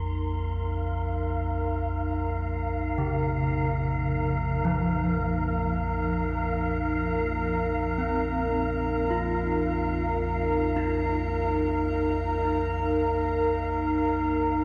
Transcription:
0.00 14.64 A#1 medium
0.00 14.64 F2 medium
0.00 14.64 D#4 medium
0.00 14.64 A#4 medium
0.00 14.64 A#5 medium
0.00 0.26 C6 medium
0.18 14.64 F5 medium
2.98 4.88 C#3 medium
4.65 11.32 F3 medium
7.98 14.64 C4 soft
9.10 10.99 F4 medium
10.76 14.64 D#4 medium

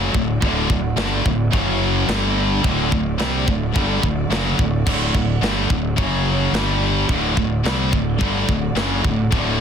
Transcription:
0.00 0.11 F#1 loud
0.00 0.13 F#2 loud
0.00 0.14 C#3 loud
0.00 1.48 D3 medium
0.00 0.14 F#3 loud
0.00 1.50 A3 medium
0.00 2.05 F#4 medium
0.00 1.48 D5 medium
0.14 0.40 D1 medium
0.14 0.36 D2 medium
0.14 0.36 A2 medium
0.14 kick medium
0.42 0.68 D1 loud
0.42 0.68 D2 medium
0.42 0.69 A2 loud
0.42 0.69 D3 loud
0.42 kick loud
0.42 china medium
0.69 0.96 D1 medium
0.69 0.92 D2 medium
0.69 0.92 A2 medium
0.69 kick loud
0.97 1.23 G1 loud
0.97 1.24 G2 medium
0.97 1.24 D3 medium
0.97 1.24 G3 medium
0.97 snare loud
0.97 china medium
1.25 1.52 D1 medium
1.25 1.47 D2 medium
1.25 1.47 A2 medium
1.25 kick loud
1.52 2.05 F#1 medium
1.52 2.07 F#2 medium
1.52 2.08 C#3 loud
1.52 2.09 C#3 medium
1.52 2.08 F#3 loud
1.52 2.09 F#3 medium
1.52 2.08 C#5 medium
1.52 kick loud
1.52 china medium
2.08 2.60 G1 loud
2.08 2.62 G2 medium
2.08 2.63 D3 loud
2.08 5.95 D3 medium
2.08 2.64 G3 loud
2.08 2.64 G3 medium
2.08 2.64 G4 medium
2.08 5.95 D5 medium
2.08 snare loud
2.08 china medium
2.62 2.90 D1 loud
2.62 2.88 D2 loud
2.62 2.89 A2 medium
2.62 2.91 D3 loud
2.62 5.95 A3 medium
2.62 kick loud
2.62 china medium
2.68 6.51 F#4 medium
2.90 3.18 D1 medium
2.90 3.13 D2 medium
2.90 3.13 A2 medium
2.90 kick loud
3.18 3.45 C2 loud
3.18 3.46 C3 medium
3.18 3.46 G3 loud
3.18 3.47 C4 loud
3.18 snare loud
3.18 china medium
3.47 3.73 D1 medium
3.47 3.69 D2 medium
3.47 3.69 A2 medium
3.47 kick medium
3.74 4.01 G1 medium
3.74 4.01 G2 medium
3.74 4.01 D3 medium
3.74 4.02 G3 loud
3.74 kick loud
3.74 china medium
4.01 4.29 D1 medium
4.01 4.24 D2 medium
4.01 4.24 A2 medium
4.01 kick medium
4.30 4.56 F#1 medium
4.30 4.57 F#2 medium
4.30 4.58 C#3 loud
4.30 4.58 F#3 loud
4.30 snare loud
4.30 china medium
4.58 4.84 D1 medium
4.58 4.80 D2 medium
4.58 4.80 A2 medium
4.58 kick medium
4.87 5.13 D1 medium
4.87 5.13 D2 loud
4.87 5.14 A2 loud
4.87 5.14 D3 loud
4.87 kick loud
4.87 china medium
4.87 crash loud
5.14 5.40 D1 medium
5.14 5.36 D2 medium
5.14 5.37 A2 medium
5.14 kick medium
5.41 5.68 G1 medium
5.41 5.69 G2 medium
5.41 5.69 D3 medium
5.41 5.69 G3 loud
5.41 snare loud
5.41 china medium
5.70 5.96 D1 medium
5.70 5.92 D2 medium
5.70 5.92 A2 medium
5.70 kick medium
5.96 6.50 F#1 medium
5.96 6.52 F#2 medium
5.96 6.51 C#3 loud
5.96 6.53 C#3 medium
5.96 6.52 F#3 medium
5.96 6.53 F#3 medium
5.96 6.54 C#5 medium
5.96 kick loud
5.96 china medium
6.52 7.04 G1 medium
6.52 7.08 G2 medium
6.52 7.09 D3 medium
6.52 7.08 D3 loud
6.52 7.09 G3 medium
6.52 7.09 G3 loud
6.52 7.09 G4 medium
6.52 9.61 D5 medium
6.52 snare loud
6.52 china medium
7.08 7.35 D1 medium
7.08 7.35 D2 medium
7.08 7.36 A2 loud
7.08 7.36 D3 loud
7.08 9.61 D3 medium
7.08 9.61 A3 medium
7.08 9.61 F#4 medium
7.08 kick loud
7.08 china medium
7.37 7.63 D1 medium
7.37 7.59 D2 medium
7.37 7.59 A2 medium
7.37 kick medium
7.64 7.90 C2 loud
7.64 7.91 C3 medium
7.64 7.91 G3 medium
7.64 7.92 C4 loud
7.64 snare loud
7.64 china medium
7.92 8.18 D1 medium
7.92 8.14 D2 medium
7.92 8.14 A2 medium
7.92 kick medium
8.19 8.47 G1 medium
8.19 8.46 G2 medium
8.19 8.47 D3 medium
8.19 8.47 G3 loud
8.19 kick loud
8.19 china medium
8.46 8.74 D1 medium
8.46 8.69 D2 medium
8.46 8.70 A2 medium
8.46 kick medium
8.75 9.01 F#1 medium
8.75 9.02 F#2 medium
8.75 9.03 C#3 loud
8.75 9.03 F#3 loud
8.75 snare loud
8.75 china medium
9.03 9.30 D1 medium
9.03 9.26 D2 medium
9.03 9.26 A2 medium
9.03 kick medium
9.31 9.58 D1 loud
9.31 9.58 D2 loud
9.31 9.58 A2 loud
9.31 9.58 D3 loud
9.31 kick loud
9.31 china medium

